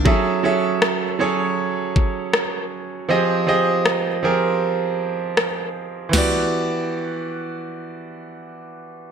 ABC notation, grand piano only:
X:1
M:4/4
L:1/8
Q:1/4=79
K:Edor
V:1 name="Grand piano"
[F,C^GAe] [F,CGAe]2 [F,CGAc]3 z2 | [=F,=CG_A_e] [F,CGAe]2 [F,CGA^A]3 z2 | [E,B,FGd]8 |]